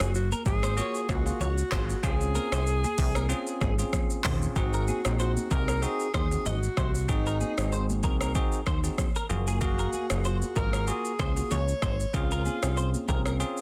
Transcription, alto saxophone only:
0.00 0.15 F#4 loud
0.15 0.29 F#4 loud
0.47 1.05 G#4 loud
1.10 1.39 F#4 loud
1.42 2.00 F#4 loud
2.05 4.21 G#4 loud
4.57 5.16 F#4 loud
5.20 5.53 F#4 loud
5.52 5.85 A#4 loud
5.83 6.14 G#4 loud
6.15 6.48 G#4 medium
6.47 7.11 F#4 loud
7.10 8.04 D#4 medium
9.63 10.22 F#4 medium
10.26 10.55 F#4 medium
10.58 10.86 A#4 loud
10.89 11.18 G#4 loud
11.21 11.54 G#4 loud
11.52 12.15 C#5 loud
12.15 13.05 F4 loud

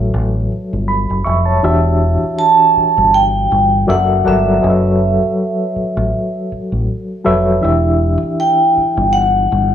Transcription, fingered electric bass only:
0.00 0.11 A1 medium
0.14 0.47 A1 medium
0.52 muted fingered electric bass stroke soft
0.73 1.05 G1 medium
1.10 1.24 F#1 medium
1.26 1.59 F1 medium
1.64 2.17 E1 loud
2.23 muted fingered electric bass stroke soft
2.77 muted fingered electric bass stroke soft
2.97 3.46 G1 medium
3.52 3.84 G1 loud
3.89 4.22 F#1 loud
4.26 4.59 G1 medium
4.64 5.17 F#1 loud
5.22 muted fingered electric bass stroke soft
5.76 muted fingered electric bass stroke soft
5.97 6.11 A1 medium
6.51 muted fingered electric bass stroke soft
6.72 6.86 A1 medium
7.26 7.59 F1 medium
7.64 8.17 E1 loud
8.23 muted fingered electric bass stroke medium
8.77 muted fingered electric bass stroke soft
8.97 9.46 G1 medium
9.52 9.75 G1 loud

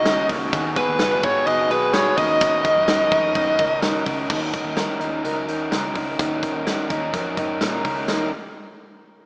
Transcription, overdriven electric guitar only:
0.06 0.30 D#3 medium
0.06 0.30 A#3 medium
0.06 0.29 C#4 medium
0.06 0.28 F#4 medium
0.29 0.53 A#3 medium
0.29 0.53 C#4 medium
0.29 0.52 F#4 medium
0.52 0.77 D#3 loud
0.52 0.77 F#3 loud
0.52 0.77 B3 loud
0.52 0.76 F#4 loud
0.52 0.75 G#4 loud
0.76 0.99 B3 soft
0.76 0.99 F#4 medium
0.76 1.00 G#4 medium
1.00 1.24 F#3 medium
1.00 1.24 B3 medium
1.00 1.23 F#4 medium
1.00 1.22 G#4 medium
1.23 1.46 B3 medium
1.23 1.46 F#4 medium
1.23 1.46 G#4 medium
1.46 1.70 D#3 medium
1.46 1.71 F#3 medium
1.46 1.70 B3 loud
1.46 1.70 F#4 medium
1.46 1.69 G#4 loud
1.70 1.93 B3 medium
1.70 1.93 F#4 medium
1.70 1.94 G#4 medium
1.93 2.17 F#3 medium
1.93 2.18 B3 medium
1.93 2.18 F#4 medium
1.93 2.17 G#4 medium
2.17 2.40 C#4 soft
2.17 2.41 D#4 medium
2.17 2.41 A#4 medium
2.40 2.65 D#3 medium
2.40 2.65 F#3 medium
2.40 2.65 C#4 medium
2.40 2.64 D#4 medium
2.40 2.63 A#4 loud
2.64 2.87 C#4 soft
2.64 2.88 D#4 medium
2.64 2.88 A#4 medium
2.87 3.12 F#3 medium
2.87 3.12 C#4 medium
2.87 3.11 D#4 medium
2.87 3.10 A#4 medium
3.12 3.35 C#4 medium
3.12 3.35 D#4 medium
3.12 3.35 A#4 medium
3.35 3.59 D#3 loud
3.35 3.59 F#3 loud
3.35 3.59 C#4 medium
3.35 3.58 D#4 loud
3.35 3.57 A#4 loud
3.58 3.81 C#4 medium
3.58 3.82 D#4 medium
3.58 3.82 A#4 medium
3.82 4.06 F#3 medium
3.82 4.06 C#4 medium
3.82 4.05 D#4 medium
3.82 4.04 A#4 medium
4.05 4.28 C#4 medium
4.05 4.29 D#4 medium
4.05 4.29 A#4 medium
4.29 4.53 D#3 medium
4.29 4.54 F#3 medium
4.29 4.53 C#4 medium
4.29 4.53 D#4 medium
4.29 4.52 A#4 loud
4.53 4.76 C#4 soft
4.53 4.77 D#4 soft
4.53 4.77 A#4 medium
4.76 5.01 F#3 medium
4.76 5.01 C#4 medium
4.76 4.99 D#4 medium
4.76 4.99 A#4 medium
5.00 5.23 C#4 soft
5.00 5.23 D#4 medium
5.00 5.23 A#4 medium
5.24 5.48 D#3 medium
5.24 5.48 F#3 medium
5.24 5.48 C#4 medium
5.24 5.47 D#4 medium
5.24 5.46 A#4 loud
5.48 5.70 C#4 soft
5.48 5.71 D#4 medium
5.48 5.71 A#4 medium
5.71 5.95 F#3 medium
5.71 5.95 C#4 medium
5.71 5.95 D#4 medium
5.71 5.93 A#4 medium
5.95 6.18 C#4 soft
5.95 6.18 D#4 medium
5.95 6.19 A#4 medium
6.19 6.43 D#3 medium
6.19 6.43 F#3 medium
6.19 6.43 C#4 medium
6.19 6.42 D#4 loud
6.19 6.41 A#4 medium
6.42 6.65 C#4 medium
6.42 6.66 D#4 medium
6.42 6.66 A#4 medium
6.66 6.90 F#3 medium
6.66 6.90 C#4 medium
6.66 6.90 D#4 medium
6.66 6.88 A#4 medium
6.89 7.13 C#4 medium
6.89 7.13 D#4 medium
6.89 7.14 A#4 medium
7.13 7.37 D#3 loud
7.13 7.37 F#3 loud
7.13 7.38 C#4 loud
7.13 7.37 D#4 loud
7.13 7.36 A#4 loud
7.38 7.61 C#4 medium
7.38 7.62 D#4 medium
7.38 7.61 A#4 medium
7.61 7.85 F#3 medium
7.61 7.85 C#4 medium
7.61 7.84 D#4 medium
7.61 7.83 A#4 medium
7.85 8.08 C#4 medium
7.85 8.09 D#4 medium
7.85 8.08 A#4 medium
8.08 8.27 D#3 medium
8.08 8.28 F#3 medium
8.08 8.28 C#4 medium
8.08 8.28 D#4 medium
8.08 8.28 A#4 medium

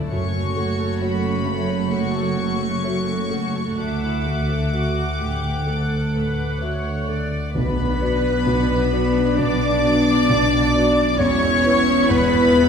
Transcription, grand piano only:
0.00 0.14 A2 soft
0.00 0.14 A3 soft
0.00 0.14 F#4 soft
0.00 0.14 E5 soft
0.12 1.88 F#2 soft
0.57 1.29 A3 soft
1.01 1.43 F#4 soft
1.01 1.43 C#5 soft
1.46 2.19 C#3 soft
1.92 2.65 A3 soft
2.37 3.12 C#3 soft
2.84 3.27 F#4 soft
2.84 3.27 C#5 soft
3.31 3.79 A3 soft
3.78 5.64 D2 soft
4.26 5.02 A3 soft
4.73 5.16 F#4 soft
4.73 5.16 E5 soft
5.20 5.95 A2 soft
5.67 6.43 A3 soft
6.14 6.90 A2 soft
6.61 7.05 F#4 soft
6.61 7.05 E5 soft
7.09 7.56 A3 soft
7.55 8.01 B1 medium
7.55 8.00 B2 soft
8.01 8.43 B3 soft
8.01 8.43 F#4 soft
8.01 8.44 D5 soft
8.46 8.91 B1 medium
8.46 8.91 B2 medium
8.92 9.34 B3 soft
8.92 9.34 F#4 soft
8.92 9.34 D5 soft
9.38 9.82 B1 medium
9.38 9.82 B2 medium
9.83 10.25 B3 soft
9.83 10.25 F#4 soft
9.83 10.25 D5 soft
10.29 10.73 B1 medium
10.29 10.73 B2 medium
10.75 11.16 B3 soft
10.75 11.16 F#4 soft
10.75 11.16 D5 soft
11.19 11.63 E1 medium
11.19 11.63 E2 medium
11.65 12.06 B3 medium
11.65 12.06 E4 soft
11.65 12.06 B4 soft
12.10 12.53 E1 medium
12.10 12.53 E2 medium
12.54 12.69 B3 medium
12.54 12.69 E4 medium
12.54 12.69 B4 medium

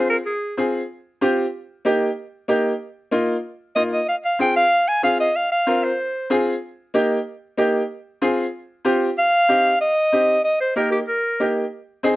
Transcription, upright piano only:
0.00 0.16 C4 medium
0.00 0.16 F4 medium
0.00 0.16 G#4 medium
0.57 0.80 C4 medium
0.57 0.80 F4 medium
0.57 0.80 G#4 medium
1.21 1.44 C4 medium
1.21 1.44 F4 medium
1.21 1.44 G4 medium
1.85 2.07 A#3 medium
1.85 2.07 D#4 medium
1.85 2.08 G4 medium
2.48 2.71 A#3 medium
2.48 2.71 D#4 medium
2.48 2.71 G4 medium
3.11 3.34 A#3 medium
3.11 3.34 D#4 medium
3.11 3.35 F4 medium
3.76 3.98 A#3 medium
3.76 3.98 D#4 medium
3.76 3.99 F4 medium
4.39 4.62 C4 medium
4.39 4.62 F4 medium
4.39 4.62 G#4 medium
5.03 5.25 C4 medium
5.03 5.25 F4 medium
5.03 5.26 G#4 medium
5.67 5.89 C4 medium
5.67 5.89 F4 medium
5.67 5.89 A#4 medium
6.30 6.53 C4 medium
6.30 6.53 F4 medium
6.30 6.53 G#4 medium
6.94 7.16 A#3 medium
6.94 7.17 D#4 medium
6.94 7.17 G4 medium
7.57 7.80 A#3 medium
7.57 7.80 D#4 medium
7.57 7.80 G4 medium
8.22 8.44 C4 medium
8.22 8.44 F4 medium
8.22 8.44 G#4 medium
8.85 9.07 C4 medium
8.85 9.08 F4 medium
8.85 9.08 G4 medium
9.49 9.71 C4 medium
9.49 9.71 D#4 medium
9.49 9.72 G4 medium
10.12 10.35 C4 medium
10.12 10.35 D#4 medium
10.12 10.35 G4 medium
10.76 10.99 A#3 medium
10.76 10.99 D#4 medium
10.76 10.99 G4 medium
11.40 11.62 A#3 medium
11.40 11.62 D#4 medium
11.40 11.63 G4 medium
12.03 12.16 C4 medium
12.03 12.16 D#4 medium
12.03 12.16 G#4 medium

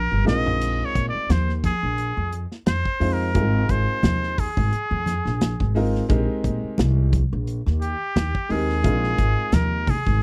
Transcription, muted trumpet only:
0.00 0.23 A#4 medium
0.27 0.87 D#5 medium
0.85 1.07 C#5 medium
1.08 1.33 D5 medium
1.31 1.53 C5 medium
1.65 2.37 G#4 medium
2.67 3.15 C5 medium
3.13 3.72 A#4 medium
3.70 4.41 C5 medium
4.39 5.76 G#4 medium
7.82 8.52 G4 medium
8.51 9.55 G#4 medium
9.54 9.91 A#4 medium
9.90 10.23 G#4 medium

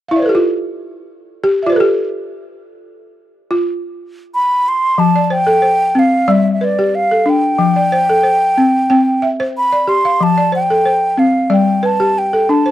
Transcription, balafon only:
0.08 0.35 E4 medium
0.08 0.26 E5 soft
0.08 0.23 F5 soft
0.16 0.33 C5 soft
0.16 0.30 D5 soft
0.22 0.39 A4 soft
0.22 0.36 B4 soft
0.29 0.43 G4 medium
0.35 1.47 F4 medium
1.44 1.66 G4 medium
1.63 1.81 F4 medium
1.63 1.80 D5 soft
1.63 1.76 E5 soft
1.70 1.87 B4 medium
1.70 1.84 C5 soft
1.76 1.91 A4 medium
1.80 3.56 G4 medium
3.51 4.64 F4 medium
4.98 5.31 F3 medium
5.16 5.64 D5 medium
5.30 5.61 C5 medium
5.47 5.80 A4 medium
5.62 6.13 C5 medium
5.95 6.28 C4 medium
6.28 6.61 G3 medium
6.28 6.78 D5 medium
6.61 7.11 B4 medium
6.79 7.11 G4 medium
7.11 7.59 A4 medium
7.26 7.59 D4 medium
7.59 7.92 F3 medium
7.76 8.24 D5 medium
7.92 8.22 C5 medium
8.09 8.42 A4 medium
8.23 8.74 C5 medium
8.58 8.89 C4 medium
8.90 9.23 C4 medium
8.90 9.40 G5 medium
9.22 9.72 E5 medium
9.40 9.72 C5 medium
9.73 10.20 D5 medium
9.87 10.20 G4 medium
10.05 10.38 F5 medium
10.21 10.53 F3 medium
10.38 10.86 D5 medium
10.52 10.84 C5 medium
10.70 11.03 A4 medium
10.85 11.35 C5 medium
11.18 11.50 C4 medium
11.50 11.83 G3 medium
11.50 12.00 D5 medium
11.83 12.33 B4 medium
12.00 12.33 G4 medium
12.33 12.71 A4 medium
12.49 12.71 D4 medium
12.66 12.71 C5 medium

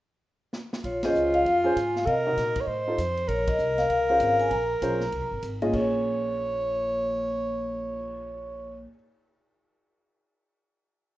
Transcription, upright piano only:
1.04 1.43 C#4 medium
1.04 1.43 F4 medium
1.04 1.44 G#4 medium
1.04 1.44 C5 medium
1.64 1.75 C#4 medium
1.64 1.75 F4 medium
1.64 1.75 G#4 medium
1.64 1.75 C5 medium
2.26 2.66 D#4 medium
2.26 2.66 F#4 medium
2.26 2.66 A#4 soft
2.26 2.66 D#5 medium
2.88 2.97 D#4 medium
2.88 2.98 F4 medium
2.88 2.98 A4 soft
2.88 2.98 C5 medium
4.10 4.49 C#4 medium
4.10 4.49 F4 soft
4.10 4.49 G#4 medium
4.10 4.49 C5 medium
4.82 4.99 C#4 medium
4.82 4.99 F4 medium
4.82 4.99 G#4 soft
4.82 4.99 C5 medium
5.62 5.66 A#2 medium
5.62 5.72 C#4 medium
5.62 5.73 F4 medium
5.62 5.73 G#4 medium
5.62 5.73 D#5 medium
5.68 8.83 A#2 medium
5.68 8.87 A#3 soft
5.74 8.90 C#4 soft
5.74 8.93 G#4 soft
5.80 8.96 C#5 medium

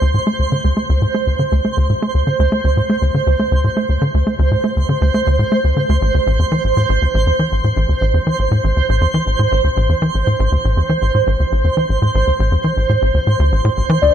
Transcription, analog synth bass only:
0.02 0.14 D2 loud
0.14 0.20 A2 medium
0.27 0.36 A3 medium
0.39 0.48 D2 medium
0.52 0.61 D3 medium
0.64 0.73 D2 medium
0.77 0.86 A3 medium
0.89 1.01 D2 loud
1.02 1.07 A2 medium
1.14 1.23 A3 medium
1.27 1.36 D2 medium
1.39 1.48 D3 medium
1.52 1.61 D2 medium
1.65 1.73 A3 medium
1.77 1.89 D2 medium
1.90 1.95 A2 medium
2.02 2.11 A3 medium
2.14 2.23 D2 medium
2.27 2.36 D3 medium
2.39 2.48 D2 loud
2.52 2.61 A3 medium
2.64 2.76 D2 medium
2.77 2.82 A2 medium
2.90 2.98 A3 medium
3.02 3.11 D2 medium
3.14 3.23 D3 medium
3.27 3.36 D2 medium
3.39 3.48 A3 medium
3.52 3.64 D2 medium
3.64 3.70 A2 medium
3.77 3.86 A3 medium
3.89 3.98 D2 medium
4.02 4.10 D3 medium
4.14 4.23 D2 medium
4.27 4.36 A3 medium
4.39 4.51 D2 loud
4.51 4.57 A2 medium
4.64 4.73 A3 medium
4.77 4.85 D2 medium
4.89 4.98 D3 medium
5.01 5.10 D2 loud
5.14 5.23 A3 medium
5.27 5.38 D2 medium
5.39 5.44 A2 medium
5.52 5.61 A3 medium
5.64 5.73 D2 medium
5.77 5.86 D3 medium
5.89 5.98 D2 loud
6.02 6.11 A1 loud
6.14 6.20 D2 medium
6.27 6.39 A1 loud
6.39 6.45 E2 medium
6.52 6.61 E3 medium
6.64 6.73 A1 medium
6.77 6.86 A2 medium
6.89 6.98 A1 medium
7.02 7.07 D2 medium
7.14 7.26 A1 loud
7.27 7.32 E2 medium
7.39 7.48 E3 medium
7.52 7.61 A1 medium
7.64 7.73 A2 medium
7.77 7.85 A1 medium
7.89 7.94 D2 medium
8.01 8.13 A1 loud
8.14 8.19 E2 medium
8.27 8.36 E3 medium
8.39 8.48 A1 medium
8.51 8.60 A2 medium
8.64 8.73 A1 medium
8.77 8.82 D2 medium
8.89 9.01 A1 loud
9.01 9.07 E2 medium
9.14 9.23 E3 medium
9.27 9.36 A1 medium
9.39 9.48 A2 medium
9.52 9.61 A1 medium
9.64 9.70 D2 medium
9.77 9.89 A1 loud
9.89 9.95 E2 medium
10.02 10.11 E3 medium
10.15 10.23 A1 medium
10.27 10.36 A2 medium
10.40 10.48 A1 loud
10.52 10.57 D2 medium
10.65 10.76 A1 medium
10.77 10.82 E2 medium
10.89 10.98 E3 medium
11.02 11.11 A1 medium
11.15 11.23 A2 medium
11.27 11.36 A1 medium
11.40 11.45 D2 medium
11.52 11.64 A1 medium
11.64 11.70 E2 medium
11.77 11.86 E3 medium
11.89 11.98 A1 medium
12.02 12.11 A2 medium
12.15 12.23 A1 loud
12.27 12.32 D2 medium
12.40 12.51 A1 loud
12.52 12.57 E2 medium
12.64 12.73 E3 medium
12.77 12.86 A1 medium
12.89 12.98 A2 medium
13.02 13.11 A1 loud
13.14 13.20 D2 medium
13.27 13.36 A2 medium
13.39 13.51 D2 loud
13.52 13.61 A1 medium
13.65 13.70 A2 loud
13.77 13.82 A1 medium
13.90 13.98 E3 loud
14.02 14.11 D2 medium

